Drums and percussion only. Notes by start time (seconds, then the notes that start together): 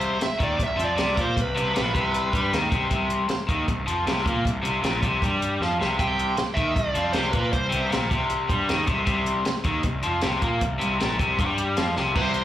0.01 closed hi-hat
0.21 snare, closed hi-hat
0.40 kick, closed hi-hat
0.59 kick, closed hi-hat
0.79 closed hi-hat
0.98 snare, closed hi-hat
1.17 kick, closed hi-hat
1.37 kick, closed hi-hat
1.57 closed hi-hat
1.76 snare, closed hi-hat
1.95 kick, closed hi-hat
2.14 closed hi-hat
2.33 kick, closed hi-hat
2.54 snare, closed hi-hat
2.72 kick, closed hi-hat
2.91 kick, closed hi-hat
3.10 closed hi-hat
3.29 snare, closed hi-hat
3.49 kick, closed hi-hat
3.68 kick, closed hi-hat
3.88 closed hi-hat
4.07 snare, closed hi-hat
4.19 snare
4.26 kick, closed hi-hat
4.45 kick, closed hi-hat
4.65 closed hi-hat
4.84 snare, closed hi-hat
5.03 kick, closed hi-hat
5.22 kick, closed hi-hat
5.42 closed hi-hat
5.62 snare
5.82 snare
5.99 kick, closed hi-hat
6.19 closed hi-hat
6.37 snare, closed hi-hat
6.57 kick, closed hi-hat
6.76 kick, closed hi-hat
6.95 closed hi-hat
7.13 snare, closed hi-hat
7.33 kick, closed hi-hat
7.53 kick, closed hi-hat
7.72 closed hi-hat
7.92 snare, closed hi-hat
8.11 kick, closed hi-hat
8.30 closed hi-hat
8.50 kick, closed hi-hat
8.69 snare, closed hi-hat
8.87 kick, closed hi-hat
9.07 kick, closed hi-hat
9.26 closed hi-hat
9.45 snare, closed hi-hat
9.64 kick, closed hi-hat
9.83 kick, closed hi-hat
10.03 closed hi-hat
10.21 snare, closed hi-hat
10.33 snare
10.42 kick, closed hi-hat
10.61 kick, closed hi-hat
10.81 closed hi-hat
11.01 snare, closed hi-hat
11.19 kick, closed hi-hat
11.39 kick, closed hi-hat
11.58 closed hi-hat
11.77 snare, closed hi-hat
11.96 snare
12.16 kick, crash
12.34 closed hi-hat